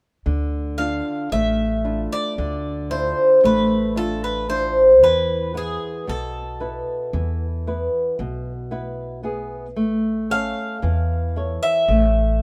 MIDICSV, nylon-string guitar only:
0, 0, Header, 1, 2, 480
1, 0, Start_track
1, 0, Tempo, 1056338
1, 117, Time_signature, 9, 3, 24, 8
1, 5644, End_track
2, 0, Start_track
2, 0, Title_t, "Nylon-string guitar"
2, 0, Program_c, 0, 24
2, 117, Note_on_c, 0, 50, 61
2, 359, Note_on_c, 0, 62, 45
2, 361, Note_on_c, 0, 65, 51
2, 583, Note_off_c, 0, 50, 0
2, 601, Note_on_c, 0, 57, 62
2, 743, Note_off_c, 0, 62, 0
2, 744, Note_off_c, 0, 65, 0
2, 838, Note_on_c, 0, 62, 41
2, 840, Note_on_c, 0, 64, 39
2, 841, Note_on_c, 0, 65, 51
2, 1066, Note_off_c, 0, 57, 0
2, 1082, Note_on_c, 0, 50, 56
2, 1223, Note_off_c, 0, 62, 0
2, 1223, Note_off_c, 0, 64, 0
2, 1224, Note_off_c, 0, 65, 0
2, 1319, Note_on_c, 0, 62, 42
2, 1322, Note_on_c, 0, 65, 50
2, 1323, Note_on_c, 0, 64, 42
2, 1547, Note_off_c, 0, 50, 0
2, 1561, Note_on_c, 0, 57, 61
2, 1704, Note_off_c, 0, 62, 0
2, 1704, Note_off_c, 0, 64, 0
2, 1704, Note_off_c, 0, 65, 0
2, 1798, Note_on_c, 0, 62, 46
2, 1798, Note_on_c, 0, 64, 44
2, 1802, Note_on_c, 0, 65, 51
2, 2026, Note_off_c, 0, 57, 0
2, 2033, Note_off_c, 0, 62, 0
2, 2036, Note_off_c, 0, 64, 0
2, 2037, Note_off_c, 0, 65, 0
2, 2038, Note_on_c, 0, 62, 48
2, 2042, Note_on_c, 0, 64, 38
2, 2043, Note_on_c, 0, 65, 49
2, 2231, Note_off_c, 0, 62, 0
2, 2233, Note_off_c, 0, 64, 0
2, 2234, Note_off_c, 0, 65, 0
2, 2283, Note_on_c, 0, 52, 64
2, 2518, Note_on_c, 0, 59, 45
2, 2520, Note_on_c, 0, 64, 41
2, 2523, Note_on_c, 0, 71, 49
2, 2748, Note_off_c, 0, 52, 0
2, 2760, Note_on_c, 0, 47, 62
2, 2903, Note_off_c, 0, 59, 0
2, 2905, Note_off_c, 0, 64, 0
2, 2905, Note_off_c, 0, 71, 0
2, 3000, Note_on_c, 0, 59, 42
2, 3002, Note_on_c, 0, 71, 48
2, 3003, Note_on_c, 0, 64, 40
2, 3226, Note_off_c, 0, 47, 0
2, 3245, Note_on_c, 0, 52, 54
2, 3384, Note_off_c, 0, 59, 0
2, 3385, Note_off_c, 0, 71, 0
2, 3386, Note_off_c, 0, 64, 0
2, 3486, Note_on_c, 0, 64, 42
2, 3487, Note_on_c, 0, 59, 48
2, 3488, Note_on_c, 0, 71, 50
2, 3708, Note_off_c, 0, 52, 0
2, 3725, Note_on_c, 0, 47, 60
2, 3867, Note_off_c, 0, 59, 0
2, 3868, Note_off_c, 0, 64, 0
2, 3869, Note_off_c, 0, 71, 0
2, 3958, Note_on_c, 0, 59, 49
2, 3961, Note_on_c, 0, 64, 43
2, 3962, Note_on_c, 0, 71, 50
2, 4188, Note_off_c, 0, 47, 0
2, 4191, Note_off_c, 0, 59, 0
2, 4191, Note_off_c, 0, 64, 0
2, 4196, Note_on_c, 0, 59, 46
2, 4197, Note_on_c, 0, 64, 41
2, 4202, Note_on_c, 0, 68, 52
2, 4344, Note_off_c, 0, 71, 0
2, 4389, Note_off_c, 0, 59, 0
2, 4389, Note_off_c, 0, 64, 0
2, 4393, Note_off_c, 0, 68, 0
2, 4437, Note_on_c, 0, 57, 65
2, 4681, Note_on_c, 0, 61, 48
2, 4684, Note_on_c, 0, 69, 43
2, 4686, Note_on_c, 0, 73, 52
2, 4903, Note_off_c, 0, 57, 0
2, 4918, Note_on_c, 0, 52, 65
2, 5063, Note_off_c, 0, 61, 0
2, 5066, Note_off_c, 0, 69, 0
2, 5066, Note_off_c, 0, 73, 0
2, 5163, Note_on_c, 0, 64, 46
2, 5165, Note_on_c, 0, 69, 42
2, 5168, Note_on_c, 0, 73, 52
2, 5383, Note_off_c, 0, 52, 0
2, 5407, Note_on_c, 0, 57, 62
2, 5544, Note_off_c, 0, 64, 0
2, 5546, Note_off_c, 0, 69, 0
2, 5546, Note_off_c, 0, 73, 0
2, 5644, Note_off_c, 0, 57, 0
2, 5644, End_track
0, 0, End_of_file